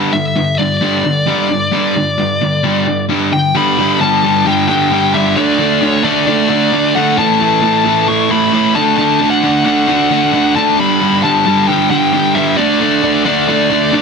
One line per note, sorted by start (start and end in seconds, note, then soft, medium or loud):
0.00 0.12 G2 medium
0.00 0.12 D3 medium
0.00 0.13 G3 medium
0.13 0.34 G2 medium
0.13 0.34 D3 medium
0.13 0.58 E5 loud
0.36 0.57 G2 medium
0.36 0.57 D3 medium
0.58 0.80 G2 medium
0.58 0.80 D3 medium
0.58 3.05 D5 medium
0.81 1.03 G2 medium
0.81 1.03 D3 medium
0.81 1.04 G3 medium
1.04 1.25 G2 medium
1.04 1.25 D3 medium
1.26 1.48 G2 medium
1.26 1.49 D3 medium
1.26 1.49 G3 medium
1.50 1.70 G2 medium
1.50 1.71 D3 medium
1.71 1.94 G2 medium
1.71 1.94 D3 loud
1.71 1.94 G3 loud
1.95 2.16 G2 medium
1.95 2.16 D3 medium
2.18 2.39 G2 medium
2.18 2.39 D3 medium
2.41 2.62 G2 medium
2.41 2.62 D3 medium
2.63 2.85 G2 medium
2.63 2.85 D3 medium
2.63 2.85 G3 medium
2.86 3.07 G2 medium
2.86 3.07 D3 medium
3.09 3.30 G2 medium
3.09 3.31 D3 medium
3.09 3.31 G3 medium
3.32 3.52 G2 medium
3.32 3.52 D3 medium
3.32 3.56 G5 medium
3.54 3.76 G2 medium
3.54 3.77 D3 medium
3.54 3.78 G3 loud
3.54 3.98 B5 loud
3.78 3.99 G2 medium
3.78 4.00 D3 loud
3.78 4.00 G3 medium
4.00 4.22 G2 medium
4.00 4.22 D3 loud
4.00 4.23 G3 loud
4.00 4.47 A5 loud
4.23 4.44 G2 medium
4.23 4.45 D3 medium
4.23 4.46 G3 loud
4.46 4.67 G2 medium
4.46 4.68 D3 medium
4.46 4.68 G3 medium
4.46 4.67 G5 medium
4.68 4.89 G2 medium
4.68 4.90 D3 medium
4.68 4.91 G3 loud
4.68 5.15 G5 medium
4.91 5.12 G2 medium
4.91 5.13 D3 loud
4.91 5.13 G3 loud
5.13 5.34 G2 medium
5.13 5.35 D3 medium
5.13 5.35 G3 loud
5.13 5.36 E5 medium
5.36 5.57 D3 loud
5.36 5.59 A3 medium
5.36 5.59 D4 loud
5.36 5.86 D5 medium
5.58 5.80 D3 medium
5.58 5.82 A3 medium
5.58 5.81 D4 loud
5.81 6.02 D3 loud
5.81 6.04 A3 loud
5.81 6.03 D4 loud
5.86 6.03 C#5 medium
6.03 6.26 D3 medium
6.03 6.27 A3 loud
6.03 6.27 D4 loud
6.03 6.97 D5 loud
6.27 6.48 D3 medium
6.27 6.49 A3 loud
6.27 6.49 D4 loud
6.49 6.71 D3 medium
6.49 6.72 A3 loud
6.49 6.72 D4 loud
6.72 6.94 D3 loud
6.72 6.95 A3 loud
6.72 6.95 D4 loud
6.95 7.16 D3 medium
6.95 7.17 A3 medium
6.95 7.16 D4 medium
6.95 7.18 F#5 medium
7.17 7.39 A2 loud
7.17 7.39 E3 loud
7.17 7.41 A3 loud
7.17 8.10 A5 medium
7.40 7.61 A2 medium
7.40 7.61 E3 medium
7.40 7.63 A3 medium
7.62 7.83 A2 loud
7.62 7.84 E3 loud
7.62 7.85 A3 loud
7.85 8.06 A2 medium
7.85 8.07 E3 loud
7.85 8.08 A3 loud
8.08 8.29 A2 medium
8.08 8.29 E3 loud
8.08 8.30 A3 loud
8.08 8.28 C#6 loud
8.30 8.51 A2 medium
8.30 8.52 E3 medium
8.30 8.53 A3 loud
8.30 8.77 B5 loud
8.52 8.73 A2 loud
8.52 8.74 E3 medium
8.52 8.74 A3 loud
8.75 8.96 D3 medium
8.75 8.97 A3 loud
8.75 8.98 D4 loud
8.75 8.95 A5 medium
8.97 9.19 D3 loud
8.97 9.20 A3 loud
8.97 9.21 D4 loud
8.97 9.30 A5 medium
9.20 9.42 D3 medium
9.20 9.42 A3 medium
9.20 9.44 D4 loud
9.30 9.65 F#5 medium
9.43 9.64 D3 medium
9.43 9.65 A3 medium
9.43 9.66 D4 loud
9.66 9.86 D3 medium
9.66 9.87 A3 medium
9.66 9.89 D4 loud
9.66 10.55 F#5 medium
9.88 10.09 D3 medium
9.88 10.10 A3 medium
9.88 10.11 D4 medium
10.10 10.31 D3 medium
10.10 10.32 A3 medium
10.10 10.34 D4 loud
10.33 10.54 D3 medium
10.33 10.55 A3 medium
10.33 10.56 D4 medium
10.55 10.76 D3 medium
10.55 10.77 A3 medium
10.55 12.58 D4 medium
10.55 10.78 A5 loud
10.77 10.99 G2 loud
10.77 11.00 D3 loud
10.77 11.00 G3 loud
10.77 11.20 B5 loud
11.00 11.22 G2 medium
11.00 11.22 D3 loud
11.00 11.23 G3 medium
11.23 11.44 G2 loud
11.23 11.45 D3 loud
11.23 11.45 G3 loud
11.23 11.67 A5 loud
11.46 11.67 G2 medium
11.46 11.68 D3 medium
11.46 11.68 G3 loud
11.68 11.89 G2 loud
11.68 11.90 D3 medium
11.68 11.90 G3 loud
11.68 11.89 G5 medium
11.90 12.12 G2 medium
11.90 12.12 D3 loud
11.90 12.13 G3 loud
11.90 12.37 G5 loud
12.13 12.34 G2 loud
12.13 12.35 D3 loud
12.13 12.35 G3 loud
12.35 12.56 G2 medium
12.35 12.56 D3 medium
12.35 12.57 G3 medium
12.35 12.57 E5 medium
12.57 12.79 D3 loud
12.57 12.80 A3 loud
12.57 12.80 D4 loud
12.57 13.21 D5 medium
12.80 13.01 D3 medium
12.80 13.03 A3 medium
12.80 13.02 D4 medium
13.02 13.23 D3 loud
13.02 13.25 A3 loud
13.02 13.25 D4 loud
13.24 13.47 D3 medium
13.24 13.48 A3 medium
13.24 13.48 D4 loud
13.24 14.02 D5 medium
13.48 13.69 D3 loud
13.48 13.70 A3 loud
13.48 13.70 D4 loud
13.70 13.92 D3 loud
13.70 13.93 A3 loud
13.70 13.93 D4 medium
13.93 14.02 D3 loud
13.93 14.02 A3 medium
13.93 14.02 D4 loud